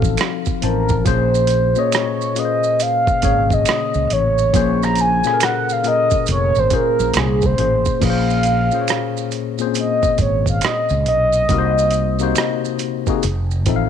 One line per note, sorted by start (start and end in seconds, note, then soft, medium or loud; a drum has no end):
0.00 0.15 A1 medium
0.00 0.59 F3 medium
0.00 0.59 C4 medium
0.00 0.59 D#4 medium
0.00 1.07 F#4 medium
0.00 0.20 A4 medium
0.00 0.63 A4 medium
0.00 0.60 F5 medium
0.00 kick loud
0.04 maracas soft
0.17 finger snap medium
0.17 cross-stick loud
0.17 closed hi-hat medium
0.17 maracas medium
0.46 kick medium
0.46 maracas soft
0.61 1.03 A1 medium
0.61 1.04 F3 medium
0.61 1.04 C4 medium
0.61 1.05 D#4 medium
0.61 1.04 A#4 medium
0.61 1.05 C5 medium
0.61 1.05 A5 medium
0.61 closed hi-hat medium
0.89 kick medium
0.89 maracas soft
1.04 1.73 A#1 loud
1.04 1.72 A#2 medium
1.04 1.72 A#3 medium
1.04 1.73 C#4 medium
1.04 1.73 G#4 medium
1.04 1.74 C5 loud
1.04 1.81 C5 medium
1.04 kick loud
1.04 closed hi-hat medium
1.04 maracas medium
1.35 maracas soft
1.47 closed hi-hat medium
1.47 maracas soft
1.75 2.33 A#2 medium
1.75 2.34 A#3 medium
1.75 2.34 C#4 medium
1.75 2.34 G#4 medium
1.75 2.40 C#5 medium
1.75 2.35 D#5 medium
1.75 maracas soft
1.92 finger snap medium
1.92 cross-stick loud
1.92 closed hi-hat medium
1.92 maracas medium
2.21 maracas soft
2.36 3.20 A#2 medium
2.36 3.20 A#3 medium
2.36 3.20 C#4 medium
2.36 3.21 G#4 medium
2.36 2.46 B4 medium
2.36 2.83 D#5 medium
2.36 closed hi-hat medium
2.36 maracas soft
2.45 3.24 C5 medium
2.63 maracas soft
2.80 3.55 F5 loud
2.80 closed hi-hat medium
2.80 maracas medium
3.07 kick medium
3.07 maracas soft
3.22 3.63 G#1 medium
3.22 4.48 C#3 medium
3.22 4.49 A#3 medium
3.22 4.49 C#4 medium
3.22 4.49 G#4 medium
3.22 4.50 C#5 medium
3.22 kick medium
3.22 closed hi-hat medium
3.22 maracas soft
3.50 4.14 D#5 medium
3.50 kick medium
3.50 maracas soft
3.65 finger snap medium
3.65 cross-stick loud
3.65 closed hi-hat medium
3.65 maracas medium
3.94 4.09 C#2 medium
3.94 maracas soft
4.10 4.50 A1 medium
4.10 4.85 C#5 loud
4.10 closed hi-hat medium
4.38 maracas soft
4.53 5.21 A#1 loud
4.53 5.20 A#2 medium
4.53 5.21 A#3 medium
4.53 5.21 C#4 medium
4.53 5.21 G#4 medium
4.53 5.22 C5 loud
4.53 kick loud
4.53 closed hi-hat medium
4.53 maracas medium
4.83 5.02 A#5 loud
4.83 cross-stick soft
4.83 maracas soft
4.95 closed hi-hat medium
4.95 maracas soft
5.01 5.45 G#5 loud
5.24 5.81 A#2 medium
5.24 5.82 A#3 medium
5.24 5.82 C#4 medium
5.24 5.83 G#4 medium
5.24 5.31 A4 medium
5.24 cross-stick soft
5.24 maracas soft
5.34 5.86 A#4 medium
5.40 5.74 F#5 medium
5.40 finger snap medium
5.40 cross-stick loud
5.40 closed hi-hat medium
5.40 maracas medium
5.69 5.86 F5 loud
5.69 maracas soft
5.84 6.68 A#2 medium
5.84 6.68 A#3 medium
5.84 6.68 C#4 medium
5.84 6.69 G#4 medium
5.84 6.69 A#4 medium
5.84 closed hi-hat medium
5.84 maracas soft
5.88 6.27 D#5 loud
6.11 kick loud
6.11 maracas soft
6.26 6.53 F1 medium
6.26 closed hi-hat medium
6.26 maracas medium
6.32 6.61 C#5 loud
6.55 6.70 G#1 medium
6.55 6.73 C5 medium
6.55 maracas soft
6.70 7.55 A#2 medium
6.70 7.55 A#3 medium
6.70 7.55 C#4 medium
6.70 7.56 G#4 medium
6.70 7.56 C5 medium
6.70 kick medium
6.70 closed hi-hat medium
6.70 maracas soft
6.75 7.20 A#4 medium
7.00 7.14 A#1 medium
7.00 maracas soft
7.14 7.55 C2 medium
7.14 finger snap medium
7.14 cross-stick loud
7.14 closed hi-hat medium
7.14 maracas medium
7.18 7.47 G#4 medium
7.42 8.03 C5 medium
7.42 kick medium
7.42 maracas soft
7.57 7.84 A1 medium
7.57 7.99 A#2 medium
7.57 8.00 A#3 medium
7.57 8.00 C#4 medium
7.57 8.01 G#4 medium
7.57 8.01 C5 medium
7.57 closed hi-hat medium
7.85 kick medium
7.85 maracas soft
8.00 8.69 A#1 loud
8.00 8.68 A#2 medium
8.00 8.68 A#3 medium
8.00 8.69 C#4 medium
8.00 8.69 G#4 medium
8.00 8.11 B4 medium
8.00 kick medium
8.00 closed hi-hat medium
8.00 crash medium
8.00 maracas medium
8.05 9.29 F5 loud
8.10 8.73 C5 medium
8.30 maracas soft
8.43 closed hi-hat medium
8.43 maracas soft
8.71 9.54 A#2 medium
8.71 9.54 A#3 medium
8.71 9.54 C#4 medium
8.71 9.55 G#4 medium
8.71 8.78 C5 medium
8.71 maracas soft
8.81 9.58 C#5 medium
8.88 finger snap medium
8.88 cross-stick medium
8.88 closed hi-hat medium
8.88 maracas medium
9.17 maracas soft
9.31 closed hi-hat medium
9.31 maracas soft
9.58 11.22 A#2 medium
9.58 11.22 A#3 medium
9.58 9.65 C4 medium
9.58 11.23 G#4 medium
9.58 11.23 C5 medium
9.58 maracas soft
9.67 11.26 C#4 medium
9.75 closed hi-hat medium
9.75 maracas medium
9.79 10.18 D#5 loud
10.03 kick medium
10.03 maracas soft
10.18 10.59 G#1 medium
10.18 10.46 C#5 medium
10.18 kick medium
10.18 closed hi-hat medium
10.18 maracas soft
10.46 10.67 F5 medium
10.46 kick medium
10.46 maracas soft
10.61 finger snap medium
10.61 cross-stick loud
10.61 closed hi-hat medium
10.61 maracas medium
10.65 11.07 D#5 loud
10.89 11.06 C#2 medium
10.89 maracas soft
11.06 11.46 B1 medium
11.06 12.77 D#5 medium
11.06 closed hi-hat medium
11.33 maracas soft
11.49 12.32 C2 loud
11.49 12.16 C3 medium
11.49 12.16 A#3 medium
11.49 12.17 D#4 medium
11.49 12.17 F#4 medium
11.49 11.59 A#4 medium
11.49 kick loud
11.49 closed hi-hat medium
11.49 maracas medium
11.58 12.21 C5 loud
11.78 maracas soft
11.91 closed hi-hat medium
11.91 maracas soft
12.19 13.02 C3 medium
12.19 13.02 A#3 medium
12.19 13.02 D#4 medium
12.19 13.03 F#4 medium
12.19 13.03 C5 medium
12.19 maracas soft
12.36 finger snap medium
12.36 cross-stick loud
12.36 closed hi-hat medium
12.36 maracas medium
12.65 maracas soft
12.79 closed hi-hat medium
12.79 maracas soft
13.07 13.23 C3 medium
13.07 13.23 A#3 medium
13.07 13.23 D#4 medium
13.07 13.24 F#4 medium
13.07 13.24 G#4 loud
13.07 kick medium
13.07 maracas soft
13.23 13.67 F1 medium
13.23 closed hi-hat medium
13.23 maracas medium
13.51 maracas soft
13.66 13.89 A1 medium
13.66 13.89 F3 loud
13.66 13.89 C4 medium
13.66 13.89 D#4 medium
13.66 13.89 A4 medium
13.66 13.76 E5 medium
13.66 kick medium
13.66 closed hi-hat medium
13.66 maracas soft
13.76 13.89 F5 loud